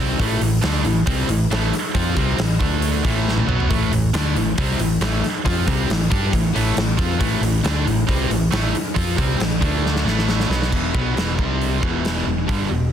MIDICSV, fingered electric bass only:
0, 0, Header, 1, 2, 480
1, 0, Start_track
1, 0, Tempo, 439239
1, 202, Time_signature, 4, 2, 24, 8
1, 14123, End_track
2, 0, Start_track
2, 0, Title_t, "Fingered electric bass"
2, 0, Program_c, 0, 33
2, 0, Note_on_c, 0, 36, 86
2, 191, Note_off_c, 0, 36, 0
2, 207, Note_on_c, 0, 33, 94
2, 428, Note_off_c, 0, 33, 0
2, 438, Note_on_c, 0, 33, 78
2, 663, Note_off_c, 0, 33, 0
2, 671, Note_on_c, 0, 38, 78
2, 898, Note_off_c, 0, 38, 0
2, 925, Note_on_c, 0, 33, 74
2, 1146, Note_off_c, 0, 33, 0
2, 1173, Note_on_c, 0, 36, 89
2, 1390, Note_off_c, 0, 36, 0
2, 1396, Note_on_c, 0, 33, 77
2, 1621, Note_off_c, 0, 33, 0
2, 1639, Note_on_c, 0, 33, 99
2, 1862, Note_off_c, 0, 33, 0
2, 2128, Note_on_c, 0, 41, 97
2, 2347, Note_off_c, 0, 41, 0
2, 2366, Note_on_c, 0, 36, 97
2, 2586, Note_off_c, 0, 36, 0
2, 2597, Note_on_c, 0, 33, 74
2, 2821, Note_off_c, 0, 33, 0
2, 2844, Note_on_c, 0, 38, 84
2, 3287, Note_off_c, 0, 38, 0
2, 3330, Note_on_c, 0, 33, 80
2, 3770, Note_off_c, 0, 33, 0
2, 3788, Note_on_c, 0, 35, 90
2, 4015, Note_off_c, 0, 35, 0
2, 4048, Note_on_c, 0, 33, 89
2, 4266, Note_off_c, 0, 33, 0
2, 4274, Note_on_c, 0, 33, 80
2, 4499, Note_off_c, 0, 33, 0
2, 4518, Note_on_c, 0, 38, 86
2, 4740, Note_off_c, 0, 38, 0
2, 4753, Note_on_c, 0, 33, 74
2, 4978, Note_off_c, 0, 33, 0
2, 5007, Note_on_c, 0, 36, 89
2, 5225, Note_off_c, 0, 36, 0
2, 5232, Note_on_c, 0, 33, 72
2, 5457, Note_off_c, 0, 33, 0
2, 5468, Note_on_c, 0, 33, 90
2, 5695, Note_off_c, 0, 33, 0
2, 5962, Note_on_c, 0, 41, 93
2, 6182, Note_off_c, 0, 41, 0
2, 6203, Note_on_c, 0, 36, 90
2, 6423, Note_off_c, 0, 36, 0
2, 6439, Note_on_c, 0, 33, 72
2, 6660, Note_off_c, 0, 33, 0
2, 6685, Note_on_c, 0, 43, 90
2, 6903, Note_off_c, 0, 43, 0
2, 6926, Note_on_c, 0, 33, 75
2, 7144, Note_off_c, 0, 33, 0
2, 7164, Note_on_c, 0, 33, 94
2, 7383, Note_off_c, 0, 33, 0
2, 7391, Note_on_c, 0, 33, 76
2, 7616, Note_off_c, 0, 33, 0
2, 7629, Note_on_c, 0, 41, 84
2, 7855, Note_off_c, 0, 41, 0
2, 7871, Note_on_c, 0, 33, 90
2, 8087, Note_off_c, 0, 33, 0
2, 8094, Note_on_c, 0, 33, 82
2, 8326, Note_off_c, 0, 33, 0
2, 8343, Note_on_c, 0, 38, 85
2, 8572, Note_off_c, 0, 38, 0
2, 8590, Note_on_c, 0, 33, 73
2, 8815, Note_off_c, 0, 33, 0
2, 8833, Note_on_c, 0, 36, 95
2, 9057, Note_off_c, 0, 36, 0
2, 9071, Note_on_c, 0, 33, 72
2, 9295, Note_off_c, 0, 33, 0
2, 9309, Note_on_c, 0, 33, 90
2, 9534, Note_off_c, 0, 33, 0
2, 9794, Note_on_c, 0, 41, 92
2, 10017, Note_off_c, 0, 41, 0
2, 10035, Note_on_c, 0, 36, 98
2, 10258, Note_off_c, 0, 36, 0
2, 10262, Note_on_c, 0, 33, 69
2, 10491, Note_off_c, 0, 33, 0
2, 10519, Note_on_c, 0, 38, 89
2, 10963, Note_off_c, 0, 38, 0
2, 10968, Note_on_c, 0, 33, 83
2, 11427, Note_off_c, 0, 33, 0
2, 11466, Note_on_c, 0, 35, 87
2, 11693, Note_off_c, 0, 35, 0
2, 11718, Note_on_c, 0, 28, 83
2, 11940, Note_off_c, 0, 28, 0
2, 11965, Note_on_c, 0, 35, 86
2, 12184, Note_off_c, 0, 35, 0
2, 12200, Note_on_c, 0, 28, 76
2, 12421, Note_off_c, 0, 28, 0
2, 12448, Note_on_c, 0, 36, 86
2, 12889, Note_off_c, 0, 36, 0
2, 12929, Note_on_c, 0, 28, 78
2, 13371, Note_off_c, 0, 28, 0
2, 13400, Note_on_c, 0, 28, 74
2, 13623, Note_off_c, 0, 28, 0
2, 13649, Note_on_c, 0, 31, 83
2, 13868, Note_off_c, 0, 31, 0
2, 13880, Note_on_c, 0, 28, 77
2, 14103, Note_off_c, 0, 28, 0
2, 14123, End_track
0, 0, End_of_file